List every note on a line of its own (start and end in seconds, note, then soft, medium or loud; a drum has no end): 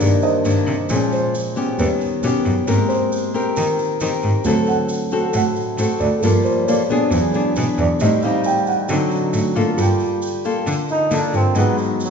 0.00 0.87 G2 medium
0.00 0.08 G2 medium
0.00 0.42 D#3 medium
0.00 0.91 D#3 soft
0.00 0.02 A#3 soft
0.00 0.42 A#3 medium
0.00 0.23 A#3 soft
0.00 0.42 D4 medium
0.00 0.91 D4 medium
0.00 0.02 D#4 soft
0.00 0.22 D#4 soft
0.00 0.02 G4 medium
0.00 0.23 G4 soft
0.00 0.02 A#4 soft
0.00 0.22 A#4 soft
0.00 0.23 C5 soft
0.00 0.91 D5 medium
0.00 0.23 D#5 medium
0.00 shaker medium
0.22 0.64 D#4 medium
0.22 0.64 A#4 medium
0.22 0.64 C5 medium
0.22 0.64 D#5 medium
0.22 shaker soft
0.45 0.53 G2 medium
0.45 0.74 D#3 medium
0.45 0.74 A#3 medium
0.45 0.74 D4 medium
0.45 shaker medium
0.67 0.75 C3 medium
0.67 shaker soft
0.89 1.76 A#2 medium
0.89 0.98 A#2 medium
0.89 1.34 F3 medium
0.89 1.74 G#3 soft
0.89 1.34 G#3 soft
0.89 1.34 C#4 medium
0.89 1.75 C#4 soft
0.89 shaker medium
1.12 1.75 C5 medium
1.12 shaker soft
1.35 shaker medium
1.56 2.19 B3 medium
1.56 2.20 C#4 medium
1.56 2.20 G4 medium
1.56 shaker soft
1.78 1.87 D#2 medium
1.78 2.65 D#3 medium
1.78 2.07 G3 soft
1.78 2.08 B3 soft
1.78 2.08 C#4 soft
1.78 2.01 B4 medium
1.78 shaker medium
2.01 shaker soft
2.23 2.31 B2 medium
2.23 2.64 B3 medium
2.23 2.64 C#4 medium
2.23 2.65 G4 medium
2.23 shaker medium
2.46 2.54 F#2 medium
2.46 shaker soft
2.67 2.76 G#2 medium
2.67 3.54 G#3 medium
2.67 2.97 A#3 soft
2.67 3.30 C4 medium
2.67 2.97 C4 soft
2.67 3.31 G4 medium
2.67 3.31 A#4 medium
2.67 shaker medium
2.88 3.52 C5 medium
2.88 shaker soft
3.12 shaker medium
3.34 3.97 C4 medium
3.34 3.97 G4 medium
3.34 3.98 A#4 medium
3.34 shaker soft
3.56 4.43 D#3 medium
3.56 3.65 D#3 medium
3.56 3.78 A#4 medium
3.56 shaker medium
3.79 shaker soft
4.00 4.09 D#3 medium
4.00 4.42 C4 soft
4.00 4.42 G4 medium
4.00 4.42 A#4 medium
4.00 shaker medium
4.22 4.32 G#2 medium
4.22 shaker soft
4.44 4.53 D2 medium
4.44 5.32 D3 medium
4.44 5.08 F#3 soft
4.44 5.09 A3 soft
4.44 5.09 C4 soft
4.44 4.89 C4 soft
4.44 4.90 F#4 medium
4.44 4.90 A4 medium
4.44 shaker medium
4.66 5.30 F#5 medium
4.66 shaker soft
4.89 shaker medium
5.11 5.75 C4 medium
5.11 5.75 F#4 medium
5.11 5.75 A4 medium
5.11 shaker soft
5.33 5.42 A2 medium
5.33 6.21 A2 medium
5.33 5.48 F#5 medium
5.33 shaker medium
5.56 shaker soft
5.78 5.86 A2 medium
5.78 6.07 C4 medium
5.78 6.07 F#4 medium
5.78 6.08 A4 medium
5.78 shaker medium
6.00 6.08 D2 medium
6.00 6.22 D5 medium
6.00 shaker soft
6.20 6.31 G2 medium
6.20 7.07 F3 soft
6.20 7.08 A#3 soft
6.20 6.64 A#3 medium
6.20 6.22 A4 soft
6.20 6.45 A#4 medium
6.20 shaker medium
6.24 7.10 G3 medium
6.24 6.64 F4 medium
6.24 6.64 A4 medium
6.44 6.66 C5 medium
6.44 shaker soft
6.63 6.66 C#5 soft
6.68 6.81 A#3 medium
6.68 6.81 F4 medium
6.68 6.81 A4 medium
6.68 6.81 D5 medium
6.68 shaker medium
6.90 7.31 B3 medium
6.90 7.31 D4 medium
6.90 7.31 G#4 medium
6.90 shaker soft
7.11 7.19 E2 medium
7.11 7.99 E3 medium
7.11 7.41 F#3 soft
7.11 7.41 G#3 soft
7.11 7.42 D4 soft
7.11 shaker medium
7.34 7.53 B3 medium
7.34 7.53 D4 medium
7.34 7.53 G#4 medium
7.34 shaker soft
7.56 7.65 B2 medium
7.56 7.99 B3 medium
7.56 7.99 D4 medium
7.56 8.00 G#4 medium
7.56 shaker medium
7.78 7.86 E2 medium
7.78 8.00 D5 medium
7.78 shaker soft
8.00 8.09 A2 medium
8.00 8.88 A2 medium
8.00 8.85 G3 soft
8.00 8.20 G3 medium
8.00 8.86 C4 soft
8.00 8.20 C4 medium
8.00 8.86 D#4 soft
8.00 8.20 D#4 medium
8.00 8.23 D#5 medium
8.00 shaker medium
8.22 8.87 G3 medium
8.22 8.87 C4 medium
8.22 8.87 D#4 medium
8.22 8.45 F5 medium
8.22 shaker soft
8.44 8.67 G5 medium
8.44 shaker medium
8.67 9.63 F#5 medium
8.67 shaker soft
8.89 8.97 D3 medium
8.89 9.76 D3 medium
8.89 9.52 F#3 soft
8.89 9.53 F#3 medium
8.89 9.53 C4 soft
8.89 9.53 C4 medium
8.89 9.53 D#4 soft
8.89 9.53 D#4 medium
8.89 shaker medium
9.11 shaker soft
9.33 9.41 A2 medium
9.33 shaker medium
9.55 9.64 A2 medium
9.55 10.19 A#3 medium
9.55 10.19 F4 medium
9.55 10.19 A4 medium
9.55 shaker soft
9.75 9.86 G2 medium
9.75 10.65 G3 medium
9.75 11.29 F4 medium
9.75 11.30 A4 soft
9.75 shaker medium
9.81 11.32 G5 medium
10.00 shaker soft
10.22 shaker medium
10.45 11.08 A#3 medium
10.45 11.08 F4 medium
10.45 11.08 A4 medium
10.45 shaker soft
10.67 10.75 D3 medium
10.67 11.54 D3 soft
10.67 shaker medium
10.89 11.16 D#4 medium
10.89 shaker soft
11.11 11.19 D3 medium
11.11 11.52 A#3 medium
11.11 11.37 D4 medium
11.11 11.52 F4 medium
11.11 11.52 A4 medium
11.11 shaker medium
11.32 11.41 G2 medium
11.32 11.59 C4 medium
11.32 11.55 F4 soft
11.32 11.55 A4 soft
11.32 11.56 A#4 soft
11.32 11.56 G5 soft
11.32 shaker soft
11.53 11.63 G#2 medium
11.53 12.10 G#2 medium
11.53 12.10 F#3 soft
11.53 12.10 B3 medium
11.53 12.10 D#4 soft
11.53 12.10 D#4 medium
11.53 12.10 G#4 soft
11.53 12.10 B4 soft
11.53 shaker medium
11.58 11.79 B3 medium
11.58 12.10 F#5 medium
11.78 11.96 D#3 soft
11.78 shaker soft
12.00 12.10 F#3 medium
12.00 shaker medium